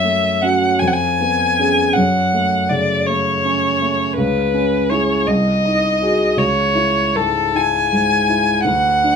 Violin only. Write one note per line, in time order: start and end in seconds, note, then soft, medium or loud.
0.00 0.44 E5 soft
0.42 0.81 F#5 soft
0.80 0.89 G#5 soft
0.88 0.95 F#5 soft
0.94 1.95 G#5 soft
1.93 2.71 F#5 soft
2.69 3.08 D5 soft
3.06 4.17 C#5 soft
4.17 4.91 B4 soft
4.90 5.29 C#5 soft
5.27 6.39 D#5 soft
6.38 7.18 C#5 soft
7.16 7.58 A4 soft
7.56 8.65 G#5 soft
8.66 9.16 F#5 soft